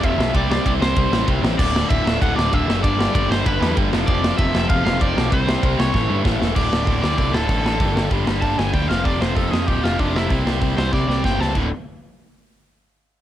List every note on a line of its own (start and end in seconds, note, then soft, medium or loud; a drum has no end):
0.02 0.15 F1 loud
0.02 0.17 F2 medium
0.02 0.17 C3 loud
0.02 0.18 F3 loud
0.02 0.35 E5 loud
0.02 kick loud
0.02 ride medium
0.18 0.30 B1 loud
0.18 0.33 F2 medium
0.18 0.32 C3 loud
0.18 0.34 F3 loud
0.18 snare loud
0.34 0.58 C2 loud
0.34 0.50 C3 loud
0.34 0.49 G3 loud
0.34 0.49 C4 loud
0.34 0.50 D5 loud
0.34 kick loud
0.34 ride medium
0.50 0.64 C3 medium
0.50 0.64 G3 medium
0.50 0.65 C4 loud
0.50 0.65 D5 medium
0.50 snare loud
0.65 0.77 C2 loud
0.65 0.81 C3 loud
0.65 0.80 G3 loud
0.65 0.80 C4 loud
0.65 0.72 D5 medium
0.65 kick loud
0.65 ride medium
0.81 0.92 C2 medium
0.81 0.95 C3 medium
0.81 0.96 G3 medium
0.81 0.97 C4 medium
0.81 1.28 C5 medium
0.81 snare loud
0.96 1.08 C2 loud
0.96 1.13 C3 loud
0.96 1.13 G3 loud
0.96 1.11 C4 loud
0.96 kick loud
0.96 ride medium
1.11 1.23 A1 medium
1.11 1.27 C3 medium
1.11 1.27 G3 medium
1.11 1.28 C4 loud
1.11 snare loud
1.28 1.39 C2 medium
1.28 1.44 C3 medium
1.28 1.44 G3 loud
1.28 1.43 C4 loud
1.28 kick loud
1.28 ride medium
1.43 1.55 A1 medium
1.43 1.59 C3 medium
1.43 1.59 G3 medium
1.43 1.58 C4 medium
1.43 snare loud
1.59 1.82 D1 loud
1.59 1.76 D2 loud
1.59 1.75 A2 medium
1.59 1.74 D3 loud
1.59 1.89 D5 loud
1.59 kick loud
1.59 crash loud
1.75 1.89 D2 medium
1.75 1.90 A2 medium
1.75 1.91 D3 medium
1.75 snare loud
1.90 2.02 D1 loud
1.90 2.06 D2 medium
1.90 2.06 A2 loud
1.90 2.05 D3 loud
1.90 2.19 E5 loud
1.90 kick loud
1.90 ride medium
2.04 2.16 D1 medium
2.04 2.20 D2 medium
2.04 2.21 A2 medium
2.04 2.22 D3 loud
2.04 snare loud
2.21 2.33 D1 loud
2.21 2.38 D2 loud
2.21 2.37 A2 loud
2.21 2.36 D3 loud
2.21 2.36 F#5 loud
2.21 kick loud
2.21 ride medium
2.36 2.48 D1 loud
2.36 2.52 D2 medium
2.36 2.53 A2 medium
2.36 2.53 D3 loud
2.36 2.53 D5 loud
2.36 snare loud
2.53 2.64 D1 medium
2.53 2.69 D2 loud
2.53 2.68 A2 loud
2.53 2.67 D3 loud
2.53 2.83 E5 loud
2.53 kick loud
2.53 ride medium
2.68 2.84 F#1 medium
2.68 2.83 D2 medium
2.68 2.83 A2 medium
2.68 2.83 D3 medium
2.68 snare loud
2.83 3.07 G1 loud
2.83 2.99 G2 loud
2.83 2.98 D3 loud
2.83 2.97 G3 loud
2.83 3.14 D5 loud
2.83 kick loud
2.83 ride medium
2.99 3.13 G2 medium
2.99 3.14 D3 medium
2.99 3.15 G3 medium
2.99 snare loud
3.15 3.26 G1 medium
3.15 3.30 G2 loud
3.15 3.30 D3 loud
3.15 3.29 G3 loud
3.15 3.29 D5 medium
3.15 kick loud
3.15 ride loud
3.30 3.42 G1 loud
3.30 3.44 G2 medium
3.30 3.45 D3 medium
3.30 3.46 G3 loud
3.30 3.45 C5 medium
3.30 snare loud
3.46 3.57 G1 loud
3.46 3.61 G2 loud
3.46 3.61 D3 loud
3.46 3.60 G3 loud
3.46 3.75 B4 medium
3.46 kick loud
3.46 ride medium
3.61 3.73 E2 medium
3.61 3.75 G2 medium
3.61 3.76 D3 medium
3.61 3.76 G3 medium
3.61 snare loud
3.76 3.89 G1 loud
3.76 3.91 G2 medium
3.76 3.91 D3 loud
3.76 3.92 G3 loud
3.76 kick loud
3.76 ride medium
3.92 4.05 F1 loud
3.92 4.08 F2 loud
3.92 4.07 C3 loud
3.92 4.06 F3 loud
3.92 snare loud
4.07 4.31 F1 loud
4.07 4.22 F2 loud
4.07 4.23 C3 loud
4.07 4.24 F3 loud
4.07 4.36 D5 loud
4.07 kick loud
4.07 ride medium
4.24 4.39 F2 medium
4.24 4.38 C3 medium
4.24 4.37 F3 medium
4.24 snare loud
4.38 4.50 F1 loud
4.38 4.53 F2 medium
4.38 4.54 C3 loud
4.38 4.55 F3 loud
4.38 4.67 E5 loud
4.38 kick loud
4.38 ride medium
4.54 4.66 F1 loud
4.54 4.70 F2 medium
4.54 4.70 C3 medium
4.54 4.69 F3 loud
4.54 snare loud
4.69 4.81 F1 loud
4.69 4.84 F2 medium
4.69 4.85 C3 medium
4.69 4.85 F3 loud
4.69 4.84 F5 loud
4.69 kick loud
4.69 ride medium
4.85 4.97 F1 medium
4.85 5.01 F2 loud
4.85 5.00 C3 medium
4.85 5.00 F3 medium
4.85 5.01 F5 loud
4.85 snare loud
5.01 5.13 F1 medium
5.01 5.15 F2 medium
5.01 5.16 C3 loud
5.01 5.16 F3 loud
5.01 5.33 D5 loud
5.01 kick loud
5.01 ride medium
5.16 5.28 B1 medium
5.16 5.31 F2 medium
5.16 5.30 C3 loud
5.16 5.32 F3 medium
5.16 snare loud
5.32 5.55 C2 loud
5.32 5.48 C3 loud
5.32 5.48 G3 loud
5.32 5.47 C4 loud
5.32 5.80 C5 medium
5.32 kick loud
5.32 ride medium
5.48 5.62 C3 medium
5.48 5.63 G3 medium
5.48 5.64 C4 medium
5.48 snare loud
5.63 5.75 C2 loud
5.63 5.80 C3 loud
5.63 5.79 G3 loud
5.63 5.78 C4 loud
5.63 kick loud
5.63 ride loud
5.76 5.90 C2 medium
5.76 5.91 C3 medium
5.76 5.94 G3 medium
5.76 5.93 C4 medium
5.76 6.22 C#5 medium
5.76 snare loud
5.81 5.94 C3 medium
5.94 6.06 A1 loud
5.94 6.10 A2 loud
5.94 6.09 E3 loud
5.94 6.08 A3 loud
5.94 kick loud
5.94 snare medium
6.10 6.21 G2 loud
6.10 6.23 A2 medium
6.10 6.24 E3 medium
6.10 6.24 A3 medium
6.24 6.37 A1 medium
6.24 6.41 A2 loud
6.24 6.40 E3 loud
6.24 6.39 A3 loud
6.24 kick loud
6.24 snare loud
6.40 6.53 E1 medium
6.40 6.55 A2 medium
6.40 6.55 E3 medium
6.40 6.55 A3 loud
6.40 snare loud
6.56 6.70 D1 medium
6.56 6.71 D2 medium
6.56 6.71 A2 medium
6.56 6.70 D3 loud
6.56 7.01 D5 loud
6.56 kick loud
6.56 crash loud
6.71 6.86 D1 medium
6.71 6.85 D2 medium
6.71 6.87 A2 medium
6.71 6.87 D3 medium
6.71 snare loud
6.86 7.01 D1 medium
6.86 7.02 D2 medium
6.86 7.02 A2 medium
6.86 7.01 D3 medium
6.86 kick loud
6.86 open hi-hat medium
7.02 7.16 D2 medium
7.02 7.17 A2 medium
7.02 7.17 D3 medium
7.02 7.17 D5 medium
7.02 snare loud
7.17 7.32 C2 medium
7.17 7.33 D2 medium
7.17 7.32 A2 medium
7.17 7.32 D3 medium
7.17 7.33 D5 medium
7.17 kick loud
7.17 open hi-hat soft
7.33 7.47 D1 medium
7.33 7.47 D2 medium
7.33 7.48 A2 medium
7.33 7.48 D3 loud
7.33 7.49 A4 medium
7.33 snare loud
7.48 7.81 A1 medium
7.48 7.65 D2 medium
7.48 7.64 A2 medium
7.48 7.63 D3 medium
7.48 8.10 A4 medium
7.48 kick loud
7.48 open hi-hat medium
7.64 7.79 D2 medium
7.64 7.80 A2 medium
7.64 7.79 D3 loud
7.64 snare loud
7.79 7.94 G1 medium
7.79 7.95 G2 medium
7.79 7.95 D3 medium
7.79 7.94 G3 loud
7.79 kick loud
7.79 open hi-hat medium
7.95 8.10 G1 medium
7.95 8.10 G2 medium
7.95 8.10 D3 medium
7.95 8.11 G3 medium
7.95 snare loud
8.11 8.25 G1 medium
8.11 8.27 G2 medium
8.11 8.26 D3 medium
8.11 8.26 G3 medium
8.11 kick loud
8.11 open hi-hat medium
8.26 8.40 G1 medium
8.26 8.42 G2 medium
8.26 8.43 D3 medium
8.26 8.43 G3 medium
8.26 snare loud
8.42 8.56 G1 medium
8.42 8.59 G2 medium
8.42 8.57 D3 medium
8.42 8.57 G3 medium
8.42 8.58 A5 medium
8.42 kick loud
8.42 open hi-hat medium
8.58 8.72 G1 medium
8.58 8.72 G2 medium
8.58 8.73 D3 loud
8.58 8.73 G3 loud
8.58 8.73 G#5 medium
8.58 snare loud
8.73 8.87 D2 medium
8.73 8.88 G2 medium
8.73 8.88 D3 medium
8.73 8.89 G3 medium
8.73 8.88 G5 medium
8.73 kick loud
8.73 open hi-hat medium
8.89 9.03 F1 medium
8.89 9.04 F2 medium
8.89 9.03 C3 loud
8.89 9.03 F3 loud
8.89 9.04 F5 medium
8.89 snare loud
9.04 9.19 F1 medium
9.04 9.19 F2 medium
9.04 9.20 C3 loud
9.04 9.20 F3 medium
9.04 9.21 D5 medium
9.04 kick loud
9.04 open hi-hat soft
9.20 9.34 F1 medium
9.20 9.37 F2 medium
9.20 9.36 C3 medium
9.20 9.36 F3 medium
9.20 9.35 C5 medium
9.20 snare loud
9.35 9.50 F1 medium
9.35 9.51 F2 medium
9.35 9.52 C3 medium
9.35 9.52 F3 loud
9.35 9.51 A4 medium
9.35 kick loud
9.35 open hi-hat medium
9.51 9.65 F2 medium
9.51 9.68 F2 medium
9.51 9.67 C3 medium
9.51 9.66 F3 medium
9.51 9.67 G#4 medium
9.51 snare loud
9.67 9.81 D1 medium
9.67 9.81 F2 medium
9.67 9.82 C3 medium
9.67 9.83 F3 medium
9.67 9.83 G4 medium
9.67 kick loud
9.67 open hi-hat soft
9.82 9.97 F1 medium
9.82 9.99 F2 medium
9.82 9.98 C3 medium
9.82 9.97 F3 loud
9.82 9.99 F4 medium
9.82 snare loud
9.98 10.27 F1 medium
9.98 10.13 F2 medium
9.98 10.14 C3 medium
9.98 10.15 F3 medium
9.98 10.16 D4 medium
9.98 kick loud
9.98 open hi-hat medium
10.14 10.29 F2 medium
10.14 10.29 C3 medium
10.14 10.30 F3 medium
10.14 10.45 E4 medium
10.14 snare medium
10.30 10.44 C2 medium
10.30 10.45 C3 medium
10.30 10.45 G3 medium
10.30 10.44 C4 medium
10.30 kick loud
10.30 open hi-hat medium
10.45 10.59 C2 medium
10.45 10.60 C3 medium
10.45 10.61 G3 medium
10.45 10.62 C4 medium
10.45 snare loud
10.61 10.75 C2 medium
10.61 10.77 C3 medium
10.61 10.76 G3 medium
10.61 10.75 C4 medium
10.61 kick loud
10.61 open hi-hat medium
10.77 10.91 C2 medium
10.77 10.90 C3 medium
10.77 10.91 G3 medium
10.77 10.92 C4 medium
10.77 10.93 C5 medium
10.77 snare loud
10.92 11.06 C2 medium
10.92 11.08 C3 medium
10.92 11.07 G3 medium
10.92 11.06 C4 medium
10.92 11.23 D5 medium
10.92 kick loud
10.92 snare medium
11.08 11.22 C2 medium
11.08 11.22 C3 medium
11.08 11.23 G3 medium
11.08 11.24 C4 medium
11.08 snare medium
11.24 11.38 G1 medium
11.24 11.39 C3 medium
11.24 11.38 G3 medium
11.24 11.38 C4 medium
11.24 11.40 G5 medium
11.24 kick loud
11.24 snare medium
11.39 11.53 C#2 medium
11.39 11.54 C3 medium
11.39 11.54 G3 medium
11.39 11.54 C4 medium
11.39 11.55 A5 medium
11.39 snare medium
11.54 11.70 D1 medium
11.54 11.67 D2 medium
11.54 11.68 A2 medium
11.54 11.68 D3 medium
11.54 kick medium
11.54 crash medium